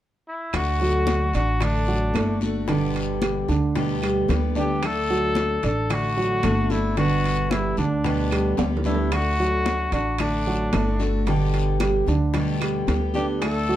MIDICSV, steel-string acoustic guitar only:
0, 0, Header, 1, 3, 480
1, 0, Start_track
1, 0, Key_signature, 2, "major"
1, 0, Tempo, 536673
1, 485, Time_signature, 4, 2, 24, 8
1, 12309, End_track
2, 0, Start_track
2, 0, Title_t, "Steel-string acoustic guitar"
2, 0, Program_c, 0, 25
2, 480, Note_on_c, 0, 50, 61
2, 484, Note_on_c, 0, 57, 66
2, 486, Note_on_c, 0, 62, 64
2, 493, Note_on_c, 0, 66, 67
2, 1192, Note_off_c, 0, 57, 0
2, 1193, Note_off_c, 0, 50, 0
2, 1199, Note_off_c, 0, 66, 0
2, 1202, Note_off_c, 0, 62, 0
2, 1441, Note_on_c, 0, 50, 59
2, 1442, Note_on_c, 0, 57, 69
2, 1449, Note_on_c, 0, 62, 69
2, 1449, Note_on_c, 0, 66, 67
2, 1911, Note_off_c, 0, 50, 0
2, 1913, Note_off_c, 0, 57, 0
2, 1917, Note_off_c, 0, 62, 0
2, 1917, Note_off_c, 0, 66, 0
2, 1921, Note_on_c, 0, 50, 42
2, 1927, Note_on_c, 0, 57, 49
2, 1927, Note_on_c, 0, 62, 47
2, 1935, Note_on_c, 0, 66, 49
2, 2153, Note_off_c, 0, 50, 0
2, 2155, Note_off_c, 0, 66, 0
2, 2156, Note_off_c, 0, 57, 0
2, 2156, Note_off_c, 0, 62, 0
2, 2166, Note_on_c, 0, 66, 59
2, 2168, Note_on_c, 0, 62, 56
2, 2175, Note_on_c, 0, 57, 52
2, 2395, Note_off_c, 0, 66, 0
2, 2396, Note_off_c, 0, 62, 0
2, 2399, Note_on_c, 0, 47, 65
2, 2400, Note_off_c, 0, 57, 0
2, 2403, Note_on_c, 0, 50, 67
2, 2408, Note_on_c, 0, 55, 72
2, 2410, Note_on_c, 0, 59, 62
2, 2415, Note_on_c, 0, 67, 69
2, 3104, Note_off_c, 0, 47, 0
2, 3106, Note_off_c, 0, 50, 0
2, 3112, Note_off_c, 0, 55, 0
2, 3113, Note_off_c, 0, 59, 0
2, 3115, Note_off_c, 0, 67, 0
2, 3359, Note_on_c, 0, 47, 62
2, 3361, Note_on_c, 0, 50, 63
2, 3365, Note_on_c, 0, 55, 66
2, 3367, Note_on_c, 0, 59, 65
2, 3368, Note_on_c, 0, 67, 72
2, 3825, Note_off_c, 0, 50, 0
2, 3830, Note_off_c, 0, 55, 0
2, 3831, Note_off_c, 0, 47, 0
2, 3835, Note_off_c, 0, 59, 0
2, 3835, Note_off_c, 0, 67, 0
2, 3836, Note_on_c, 0, 50, 47
2, 3841, Note_on_c, 0, 55, 53
2, 3847, Note_on_c, 0, 59, 47
2, 3848, Note_on_c, 0, 67, 53
2, 4064, Note_off_c, 0, 67, 0
2, 4069, Note_off_c, 0, 50, 0
2, 4070, Note_off_c, 0, 59, 0
2, 4072, Note_off_c, 0, 55, 0
2, 4074, Note_on_c, 0, 67, 64
2, 4081, Note_on_c, 0, 59, 58
2, 4082, Note_on_c, 0, 55, 49
2, 4089, Note_on_c, 0, 50, 52
2, 4307, Note_off_c, 0, 50, 0
2, 4308, Note_off_c, 0, 67, 0
2, 4312, Note_off_c, 0, 55, 0
2, 4312, Note_off_c, 0, 59, 0
2, 4318, Note_on_c, 0, 50, 63
2, 4322, Note_on_c, 0, 57, 61
2, 4327, Note_on_c, 0, 62, 64
2, 4332, Note_on_c, 0, 66, 66
2, 5022, Note_off_c, 0, 50, 0
2, 5024, Note_off_c, 0, 57, 0
2, 5025, Note_off_c, 0, 66, 0
2, 5036, Note_off_c, 0, 62, 0
2, 5272, Note_on_c, 0, 50, 64
2, 5274, Note_on_c, 0, 57, 67
2, 5279, Note_on_c, 0, 62, 72
2, 5281, Note_on_c, 0, 66, 73
2, 5744, Note_off_c, 0, 50, 0
2, 5748, Note_off_c, 0, 57, 0
2, 5750, Note_off_c, 0, 62, 0
2, 5751, Note_off_c, 0, 66, 0
2, 5755, Note_on_c, 0, 50, 45
2, 5759, Note_on_c, 0, 57, 50
2, 5765, Note_on_c, 0, 62, 50
2, 5771, Note_on_c, 0, 66, 53
2, 5981, Note_off_c, 0, 66, 0
2, 5988, Note_off_c, 0, 50, 0
2, 5990, Note_off_c, 0, 57, 0
2, 5990, Note_off_c, 0, 62, 0
2, 5992, Note_on_c, 0, 66, 65
2, 6001, Note_on_c, 0, 62, 56
2, 6002, Note_on_c, 0, 57, 52
2, 6227, Note_off_c, 0, 66, 0
2, 6231, Note_off_c, 0, 62, 0
2, 6231, Note_on_c, 0, 47, 58
2, 6232, Note_off_c, 0, 57, 0
2, 6235, Note_on_c, 0, 50, 60
2, 6236, Note_on_c, 0, 55, 68
2, 6242, Note_on_c, 0, 59, 66
2, 6937, Note_off_c, 0, 47, 0
2, 6939, Note_off_c, 0, 55, 0
2, 6941, Note_off_c, 0, 50, 0
2, 6945, Note_off_c, 0, 59, 0
2, 7190, Note_on_c, 0, 47, 69
2, 7193, Note_on_c, 0, 50, 65
2, 7199, Note_on_c, 0, 55, 66
2, 7201, Note_on_c, 0, 59, 64
2, 7202, Note_on_c, 0, 67, 73
2, 7660, Note_off_c, 0, 50, 0
2, 7662, Note_off_c, 0, 55, 0
2, 7666, Note_off_c, 0, 47, 0
2, 7666, Note_off_c, 0, 59, 0
2, 7671, Note_on_c, 0, 50, 46
2, 7672, Note_off_c, 0, 67, 0
2, 7673, Note_on_c, 0, 55, 52
2, 7677, Note_on_c, 0, 59, 45
2, 7683, Note_on_c, 0, 67, 49
2, 7902, Note_off_c, 0, 67, 0
2, 7904, Note_off_c, 0, 59, 0
2, 7906, Note_off_c, 0, 50, 0
2, 7908, Note_off_c, 0, 55, 0
2, 7913, Note_on_c, 0, 67, 61
2, 7915, Note_on_c, 0, 59, 58
2, 7923, Note_on_c, 0, 55, 51
2, 7925, Note_on_c, 0, 50, 50
2, 8140, Note_off_c, 0, 50, 0
2, 8147, Note_off_c, 0, 67, 0
2, 8148, Note_off_c, 0, 59, 0
2, 8151, Note_on_c, 0, 50, 61
2, 8153, Note_off_c, 0, 55, 0
2, 8157, Note_on_c, 0, 57, 66
2, 8159, Note_on_c, 0, 62, 66
2, 8165, Note_on_c, 0, 66, 73
2, 8861, Note_off_c, 0, 50, 0
2, 8865, Note_off_c, 0, 57, 0
2, 8868, Note_off_c, 0, 66, 0
2, 8870, Note_off_c, 0, 62, 0
2, 9112, Note_on_c, 0, 50, 66
2, 9115, Note_on_c, 0, 57, 67
2, 9124, Note_on_c, 0, 62, 73
2, 9125, Note_on_c, 0, 66, 71
2, 9580, Note_off_c, 0, 50, 0
2, 9585, Note_off_c, 0, 57, 0
2, 9589, Note_off_c, 0, 62, 0
2, 9591, Note_on_c, 0, 50, 45
2, 9595, Note_off_c, 0, 66, 0
2, 9596, Note_on_c, 0, 57, 45
2, 9600, Note_on_c, 0, 62, 51
2, 9605, Note_on_c, 0, 66, 55
2, 9821, Note_off_c, 0, 66, 0
2, 9828, Note_off_c, 0, 50, 0
2, 9829, Note_off_c, 0, 62, 0
2, 9830, Note_off_c, 0, 57, 0
2, 9832, Note_on_c, 0, 66, 66
2, 9839, Note_on_c, 0, 62, 59
2, 9843, Note_on_c, 0, 57, 53
2, 10068, Note_off_c, 0, 66, 0
2, 10072, Note_off_c, 0, 62, 0
2, 10073, Note_on_c, 0, 47, 64
2, 10074, Note_off_c, 0, 57, 0
2, 10078, Note_on_c, 0, 50, 68
2, 10083, Note_on_c, 0, 55, 65
2, 10083, Note_on_c, 0, 59, 73
2, 10087, Note_on_c, 0, 67, 66
2, 10790, Note_off_c, 0, 47, 0
2, 10791, Note_off_c, 0, 55, 0
2, 10792, Note_off_c, 0, 50, 0
2, 10795, Note_off_c, 0, 59, 0
2, 10797, Note_off_c, 0, 67, 0
2, 11032, Note_on_c, 0, 47, 70
2, 11039, Note_on_c, 0, 50, 69
2, 11041, Note_on_c, 0, 55, 64
2, 11044, Note_on_c, 0, 59, 65
2, 11046, Note_on_c, 0, 67, 72
2, 11501, Note_off_c, 0, 50, 0
2, 11506, Note_off_c, 0, 55, 0
2, 11510, Note_off_c, 0, 47, 0
2, 11510, Note_off_c, 0, 59, 0
2, 11511, Note_on_c, 0, 50, 49
2, 11514, Note_off_c, 0, 67, 0
2, 11517, Note_on_c, 0, 55, 47
2, 11521, Note_on_c, 0, 59, 46
2, 11525, Note_on_c, 0, 67, 57
2, 11738, Note_off_c, 0, 67, 0
2, 11744, Note_off_c, 0, 59, 0
2, 11749, Note_off_c, 0, 55, 0
2, 11749, Note_on_c, 0, 67, 65
2, 11750, Note_off_c, 0, 50, 0
2, 11755, Note_on_c, 0, 59, 64
2, 11760, Note_on_c, 0, 55, 54
2, 11763, Note_on_c, 0, 50, 51
2, 11987, Note_off_c, 0, 50, 0
2, 11989, Note_off_c, 0, 67, 0
2, 11992, Note_off_c, 0, 59, 0
2, 11994, Note_off_c, 0, 55, 0
2, 11998, Note_on_c, 0, 50, 62
2, 12003, Note_on_c, 0, 57, 68
2, 12007, Note_on_c, 0, 62, 70
2, 12011, Note_on_c, 0, 66, 72
2, 12309, Note_off_c, 0, 50, 0
2, 12309, Note_off_c, 0, 57, 0
2, 12309, Note_off_c, 0, 62, 0
2, 12309, Note_off_c, 0, 66, 0
2, 12309, End_track
3, 0, Start_track
3, 0, Title_t, "Muted steel-string acoustic guitar strokes"
3, 1203, Note_on_c, 9, 29, 53
3, 1292, Note_off_c, 9, 29, 0
3, 3115, Note_on_c, 9, 29, 55
3, 3205, Note_off_c, 9, 29, 0
3, 5033, Note_on_c, 9, 29, 53
3, 5122, Note_off_c, 9, 29, 0
3, 6948, Note_on_c, 9, 29, 50
3, 7037, Note_off_c, 9, 29, 0
3, 8872, Note_on_c, 9, 29, 55
3, 8961, Note_off_c, 9, 29, 0
3, 10801, Note_on_c, 9, 29, 53
3, 10890, Note_off_c, 9, 29, 0
3, 12309, End_track
0, 0, End_of_file